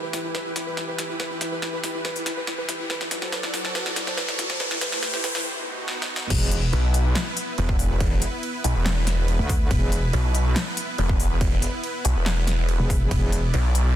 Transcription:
0.00 2.87 E3 medium
0.00 2.86 E4 medium
0.00 2.86 G4 medium
0.00 2.87 B4 medium
0.00 0.10 B4 medium
0.00 riser medium
0.13 0.21 E4 medium
0.13 snare medium
0.13 open hi-hat medium
0.24 0.31 E4 medium
0.34 0.42 B4 medium
0.34 snare medium
0.46 0.53 E4 medium
0.56 0.64 E4 medium
0.56 snare medium
0.56 closed hi-hat medium
0.67 0.74 B4 medium
0.77 0.85 E4 medium
0.77 snare medium
0.88 0.95 B4 medium
0.98 1.06 E4 medium
0.98 snare medium
0.98 closed hi-hat medium
1.09 1.17 E4 medium
1.20 1.27 B4 medium
1.20 snare medium
1.31 1.38 E4 medium
1.41 1.49 E4 medium
1.41 snare medium
1.41 closed hi-hat medium
1.52 1.59 B4 medium
1.62 1.70 E4 medium
1.62 snare medium
1.73 1.81 B4 medium
1.84 1.91 E4 medium
1.84 snare medium
1.84 open hi-hat loud
1.95 2.02 E4 medium
2.05 2.13 B4 loud
2.05 snare medium
2.16 2.23 E4 medium
2.16 closed hi-hat soft
2.26 2.34 E4 medium
2.26 snare medium
2.26 closed hi-hat medium
2.37 2.44 B4 medium
2.47 2.55 E4 medium
2.47 snare medium
2.58 2.66 B4 loud
2.69 2.76 E4 medium
2.69 snare medium
2.69 closed hi-hat medium
2.79 2.87 E4 medium
2.90 4.58 F#3 medium
2.90 4.58 F#4 medium
2.90 4.58 A4 medium
2.90 2.98 B4 loud
2.90 4.58 D5 medium
2.90 snare medium
3.01 3.08 E4 medium
3.01 snare medium
3.11 3.19 E4 medium
3.11 snare loud
3.11 closed hi-hat medium
3.22 3.29 C5 medium
3.22 snare medium
3.32 3.40 B4 loud
3.32 snare loud
3.43 3.51 E4 medium
3.43 snare medium
3.54 3.62 E4 medium
3.54 snare medium
3.54 open hi-hat medium
3.65 3.72 C5 medium
3.65 snare medium
3.75 3.83 B4 loud
3.75 snare loud
3.86 3.93 E4 medium
3.86 snare medium
3.96 4.04 E4 medium
3.96 snare loud
3.96 closed hi-hat medium
4.07 4.15 C5 medium
4.07 snare medium
4.17 4.25 B4 loud
4.17 snare loud
4.28 4.36 E4 medium
4.28 snare medium
4.39 4.47 E4 medium
4.39 snare loud
4.39 closed hi-hat medium
4.50 4.57 C5 medium
4.50 snare medium
4.60 5.44 A3 medium
4.60 5.44 E4 medium
4.60 5.44 G4 medium
4.60 4.68 B4 loud
4.60 5.44 C5 medium
4.60 snare loud
4.71 4.78 E4 medium
4.71 snare medium
4.81 4.89 B4 loud
4.81 snare loud
4.81 closed hi-hat medium
4.92 5.00 E4 medium
4.92 snare medium
5.03 5.10 B4 loud
5.03 snare loud
5.14 5.21 E4 medium
5.14 snare medium
5.24 5.32 B4 loud
5.24 snare loud
5.24 open hi-hat loud
5.35 5.42 E4 medium
5.35 snare medium
5.45 6.29 B2 medium
5.45 6.29 B3 medium
5.45 6.29 D#4 medium
5.45 6.30 F#4 medium
5.88 snare medium
6.02 snare medium
6.16 snare loud
6.30 6.71 E1 loud
6.30 13.96 B3 medium
6.30 13.96 E4 medium
6.30 13.09 B4 medium
6.30 kick loud
6.30 crash loud
6.30 ride medium
6.52 closed hi-hat medium
6.73 7.14 B1 loud
6.73 ride soft
6.94 closed hi-hat medium
7.15 snare loud
7.15 clap medium
7.15 ride medium
7.37 closed hi-hat medium
7.58 8.20 E1 loud
7.58 ride soft
7.69 kick loud
7.79 open hi-hat medium
8.00 kick loud
8.00 ride medium
8.22 closed hi-hat medium
8.43 ride soft
8.64 8.74 B1 loud
8.64 closed hi-hat medium
8.75 9.37 E1 loud
8.86 snare loud
8.86 clap loud
8.86 ride medium
9.07 snare medium
9.07 closed hi-hat medium
9.28 ride soft
9.39 9.69 D2 loud
9.49 kick loud
9.49 open hi-hat medium
9.71 10.12 E1 loud
9.71 kick loud
9.71 ride medium
9.92 closed hi-hat medium
10.13 10.54 B1 medium
10.13 ride soft
10.35 closed hi-hat medium
10.56 snare loud
10.56 clap loud
10.56 ride medium
10.77 closed hi-hat medium
10.98 11.61 E1 loud
10.98 ride soft
11.09 kick loud
11.20 open hi-hat medium
11.41 kick loud
11.41 ride medium
11.62 closed hi-hat medium
11.84 ride medium
12.05 12.14 B1 loud
12.05 closed hi-hat medium
12.16 12.57 E1 medium
12.26 snare loud
12.26 clap medium
12.26 ride medium
12.47 snare medium
12.47 closed hi-hat medium
12.58 12.78 E1 loud
12.69 ride soft
12.80 13.10 E1 loud
12.90 kick loud
12.90 open hi-hat medium
13.11 13.52 E1 loud
13.11 13.96 D5 medium
13.11 kick loud
13.11 ride medium
13.32 closed hi-hat medium
13.54 13.95 B1 loud
13.54 ride medium
13.75 closed hi-hat medium

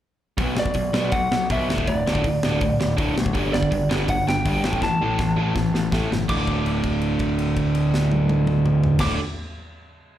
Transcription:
0.38 0.53 B1 medium
0.38 0.56 B2 loud
0.38 0.56 F#3 medium
0.38 0.57 B3 loud
0.38 kick loud
0.38 open hi-hat medium
0.56 0.72 B1 medium
0.56 0.74 B2 medium
0.56 0.73 F#3 medium
0.56 1.16 D5 medium
0.56 snare loud
0.66 kick medium
0.74 0.91 B1 medium
0.74 0.92 B2 medium
0.74 0.92 F#3 medium
0.74 kick medium
0.74 open hi-hat medium
0.93 1.09 B1 medium
0.93 1.11 B2 medium
0.93 1.12 F#3 medium
0.93 1.12 B3 medium
0.93 snare loud
1.12 1.28 B1 medium
1.12 1.30 B2 medium
1.12 1.30 F#3 medium
1.12 1.47 F#5 loud
1.12 kick loud
1.12 open hi-hat medium
1.31 1.47 B1 medium
1.31 1.49 B2 medium
1.31 1.49 F#3 medium
1.31 snare loud
1.50 1.70 B1 medium
1.50 1.68 B2 medium
1.50 1.68 F#3 medium
1.50 1.69 B3 medium
1.50 1.90 E5 medium
1.50 kick loud
1.50 open hi-hat medium
1.69 1.84 D1 medium
1.69 1.86 D2 medium
1.69 1.87 A2 loud
1.69 1.87 D3 loud
1.69 snare loud
1.78 kick medium
1.87 2.03 D1 loud
1.87 2.04 D2 medium
1.87 2.05 A2 medium
1.87 2.95 D5 medium
1.87 kick medium
1.87 open hi-hat medium
2.06 2.21 D1 medium
2.06 2.23 D2 medium
2.06 2.24 A2 loud
2.06 2.24 D3 loud
2.06 snare loud
2.15 kick medium
2.24 2.40 D1 medium
2.24 2.41 D2 medium
2.24 2.42 A2 medium
2.24 kick medium
2.24 open hi-hat medium
2.43 2.59 D1 loud
2.43 2.61 D2 medium
2.43 2.61 A2 loud
2.43 2.62 D3 loud
2.43 snare loud
2.61 2.77 D1 medium
2.61 2.79 D2 medium
2.61 2.79 A2 medium
2.61 kick loud
2.61 open hi-hat medium
2.80 2.96 D1 medium
2.80 2.96 D2 medium
2.80 2.96 A2 medium
2.80 snare loud
2.97 3.13 D1 loud
2.97 3.15 D2 medium
2.97 3.14 A2 loud
2.97 3.15 D3 loud
2.97 kick loud
2.97 open hi-hat medium
3.16 3.33 B1 medium
3.16 3.33 D2 medium
3.16 3.33 A2 medium
3.16 snare loud
3.26 kick medium
3.34 3.50 G1 loud
3.34 3.51 G2 medium
3.34 3.52 D3 loud
3.34 3.53 G3 loud
3.34 kick medium
3.34 open hi-hat soft
3.52 3.69 G1 medium
3.52 3.70 G2 medium
3.52 3.70 D3 medium
3.52 3.88 D5 medium
3.52 snare loud
3.63 kick medium
3.71 3.88 G1 medium
3.71 3.88 G2 medium
3.71 3.89 D3 medium
3.71 kick medium
3.71 open hi-hat medium
3.89 4.06 G1 loud
3.89 4.08 G2 medium
3.89 4.08 D3 loud
3.89 4.08 G3 medium
3.89 snare loud
4.08 4.24 G1 medium
4.08 4.26 G2 medium
4.08 4.26 D3 medium
4.08 4.28 F#5 loud
4.08 kick loud
4.08 open hi-hat medium
4.27 4.43 G1 medium
4.27 4.44 G2 medium
4.27 4.44 D3 medium
4.27 4.79 G5 medium
4.27 snare loud
4.45 4.61 G1 medium
4.45 4.63 G2 medium
4.45 4.64 D3 medium
4.45 4.64 G3 medium
4.45 kick loud
4.45 open hi-hat medium
4.64 4.79 A1 medium
4.64 4.82 A2 medium
4.64 4.82 E3 loud
4.64 4.82 A3 medium
4.64 snare loud
4.73 kick medium
4.81 4.97 A1 loud
4.81 5.00 A2 medium
4.81 5.00 E3 medium
4.81 5.89 A5 loud
4.81 kick medium
4.81 snare medium
5.01 5.16 A1 medium
5.01 5.18 A2 medium
5.01 5.18 E3 medium
5.01 5.20 A3 loud
5.19 5.34 A1 medium
5.19 5.36 A2 medium
5.19 5.36 E3 medium
5.19 kick loud
5.19 snare medium
5.36 5.52 A1 medium
5.36 5.54 A2 medium
5.36 5.54 E3 medium
5.36 5.55 A3 loud
5.55 5.71 A1 medium
5.55 5.72 A2 medium
5.55 5.72 E3 medium
5.55 kick loud
5.55 snare medium
5.73 5.88 A1 medium
5.73 5.91 A2 medium
5.73 5.92 E3 medium
5.73 snare medium
5.91 6.07 A1 medium
5.91 6.10 A2 medium
5.91 6.10 E3 medium
5.91 6.10 A3 medium
5.91 kick loud
5.91 snare medium
6.12 6.26 G1 medium
6.12 6.28 A2 medium
6.12 6.28 E3 medium
6.12 snare medium
6.29 8.92 D1 medium
6.29 8.99 D2 loud
6.29 9.02 A2 loud
6.29 8.92 D6 medium
6.29 kick loud
6.29 crash medium
6.34 9.03 D3 loud
6.47 kick medium
6.47 crash soft
6.66 crash soft
6.83 kick medium
6.83 crash medium
7.01 crash soft
7.19 kick medium
7.19 crash soft
7.39 crash soft
7.57 kick medium
7.57 crash soft
7.75 crash soft
7.94 snare medium
8.12 high tom medium
8.29 high tom loud
8.47 mid tom loud
8.66 mid tom loud
8.84 floor tom loud
8.99 9.15 D1 medium
8.99 9.16 D2 medium
8.99 9.17 A2 loud
8.99 9.16 D6 medium
8.99 kick loud
8.99 snare loud
8.99 crash loud
9.04 9.18 D3 medium

